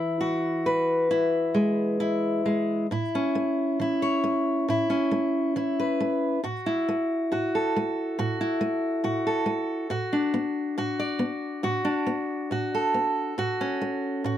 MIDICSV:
0, 0, Header, 1, 2, 480
1, 0, Start_track
1, 0, Key_signature, 3, "major"
1, 0, Tempo, 895522
1, 1562, Time_signature, 4, 2, 24, 8
1, 2038, Tempo, 870827
1, 7866, End_track
2, 0, Start_track
2, 0, Title_t, "Steel-string acoustic guitar"
2, 0, Program_c, 0, 25
2, 0, Note_on_c, 0, 52, 73
2, 0, Note_on_c, 0, 64, 55
2, 110, Note_on_c, 0, 66, 59
2, 354, Note_on_c, 0, 71, 55
2, 587, Note_off_c, 0, 64, 0
2, 593, Note_on_c, 0, 64, 60
2, 828, Note_on_c, 0, 56, 60
2, 1066, Note_off_c, 0, 64, 0
2, 1072, Note_on_c, 0, 64, 55
2, 1310, Note_off_c, 0, 56, 0
2, 1316, Note_on_c, 0, 56, 55
2, 1531, Note_off_c, 0, 56, 0
2, 1531, Note_off_c, 0, 64, 0
2, 1531, Note_off_c, 0, 66, 0
2, 1532, Note_off_c, 0, 52, 0
2, 1534, Note_off_c, 0, 71, 0
2, 1560, Note_on_c, 0, 45, 63
2, 1565, Note_on_c, 0, 64, 53
2, 1688, Note_on_c, 0, 61, 51
2, 1797, Note_on_c, 0, 57, 56
2, 1989, Note_off_c, 0, 45, 0
2, 2034, Note_on_c, 0, 52, 54
2, 2042, Note_off_c, 0, 64, 0
2, 2044, Note_on_c, 0, 64, 54
2, 2159, Note_on_c, 0, 73, 51
2, 2228, Note_off_c, 0, 57, 0
2, 2277, Note_on_c, 0, 57, 56
2, 2471, Note_off_c, 0, 52, 0
2, 2524, Note_on_c, 0, 45, 69
2, 2529, Note_off_c, 0, 64, 0
2, 2531, Note_on_c, 0, 64, 54
2, 2635, Note_off_c, 0, 61, 0
2, 2642, Note_on_c, 0, 61, 50
2, 2713, Note_off_c, 0, 57, 0
2, 2761, Note_on_c, 0, 57, 57
2, 2957, Note_off_c, 0, 45, 0
2, 3003, Note_off_c, 0, 64, 0
2, 3006, Note_on_c, 0, 52, 56
2, 3010, Note_on_c, 0, 64, 52
2, 3125, Note_off_c, 0, 73, 0
2, 3137, Note_on_c, 0, 71, 55
2, 3196, Note_off_c, 0, 57, 0
2, 3252, Note_on_c, 0, 57, 55
2, 3440, Note_off_c, 0, 52, 0
2, 3458, Note_off_c, 0, 61, 0
2, 3464, Note_off_c, 0, 71, 0
2, 3490, Note_off_c, 0, 57, 0
2, 3490, Note_off_c, 0, 64, 0
2, 3490, Note_on_c, 0, 45, 65
2, 3494, Note_on_c, 0, 66, 57
2, 3615, Note_on_c, 0, 64, 53
2, 3737, Note_on_c, 0, 57, 59
2, 3923, Note_off_c, 0, 45, 0
2, 3975, Note_on_c, 0, 45, 59
2, 3976, Note_off_c, 0, 66, 0
2, 3978, Note_on_c, 0, 66, 55
2, 4103, Note_on_c, 0, 69, 52
2, 4166, Note_off_c, 0, 57, 0
2, 4222, Note_on_c, 0, 57, 59
2, 4404, Note_off_c, 0, 45, 0
2, 4454, Note_on_c, 0, 45, 69
2, 4455, Note_off_c, 0, 66, 0
2, 4457, Note_on_c, 0, 66, 60
2, 4570, Note_off_c, 0, 64, 0
2, 4576, Note_on_c, 0, 64, 54
2, 4646, Note_off_c, 0, 57, 0
2, 4686, Note_on_c, 0, 57, 61
2, 4880, Note_off_c, 0, 45, 0
2, 4924, Note_off_c, 0, 66, 0
2, 4924, Note_on_c, 0, 45, 55
2, 4927, Note_on_c, 0, 66, 55
2, 5043, Note_off_c, 0, 69, 0
2, 5050, Note_on_c, 0, 69, 55
2, 5115, Note_off_c, 0, 57, 0
2, 5156, Note_on_c, 0, 57, 59
2, 5353, Note_off_c, 0, 45, 0
2, 5376, Note_off_c, 0, 64, 0
2, 5397, Note_off_c, 0, 57, 0
2, 5399, Note_on_c, 0, 45, 69
2, 5401, Note_off_c, 0, 66, 0
2, 5403, Note_on_c, 0, 66, 54
2, 5404, Note_off_c, 0, 69, 0
2, 5524, Note_on_c, 0, 62, 55
2, 5640, Note_on_c, 0, 59, 61
2, 5828, Note_off_c, 0, 45, 0
2, 5882, Note_on_c, 0, 45, 62
2, 5883, Note_off_c, 0, 66, 0
2, 5885, Note_on_c, 0, 66, 59
2, 6003, Note_on_c, 0, 74, 56
2, 6068, Note_off_c, 0, 59, 0
2, 6111, Note_on_c, 0, 59, 60
2, 6309, Note_off_c, 0, 45, 0
2, 6353, Note_on_c, 0, 45, 67
2, 6355, Note_off_c, 0, 66, 0
2, 6357, Note_on_c, 0, 66, 60
2, 6465, Note_off_c, 0, 62, 0
2, 6472, Note_on_c, 0, 62, 56
2, 6544, Note_off_c, 0, 59, 0
2, 6592, Note_on_c, 0, 59, 61
2, 6787, Note_off_c, 0, 45, 0
2, 6837, Note_off_c, 0, 66, 0
2, 6837, Note_on_c, 0, 45, 55
2, 6843, Note_on_c, 0, 66, 56
2, 6960, Note_off_c, 0, 74, 0
2, 6967, Note_on_c, 0, 69, 59
2, 7028, Note_off_c, 0, 59, 0
2, 7077, Note_on_c, 0, 59, 56
2, 7271, Note_off_c, 0, 45, 0
2, 7289, Note_off_c, 0, 62, 0
2, 7293, Note_off_c, 0, 66, 0
2, 7316, Note_on_c, 0, 45, 69
2, 7318, Note_off_c, 0, 59, 0
2, 7321, Note_on_c, 0, 66, 59
2, 7443, Note_on_c, 0, 61, 52
2, 7557, Note_on_c, 0, 57, 56
2, 7751, Note_off_c, 0, 45, 0
2, 7793, Note_on_c, 0, 45, 57
2, 7794, Note_off_c, 0, 66, 0
2, 7800, Note_on_c, 0, 66, 58
2, 7866, Note_off_c, 0, 45, 0
2, 7866, Note_off_c, 0, 57, 0
2, 7866, Note_off_c, 0, 61, 0
2, 7866, Note_off_c, 0, 66, 0
2, 7866, Note_off_c, 0, 69, 0
2, 7866, End_track
0, 0, End_of_file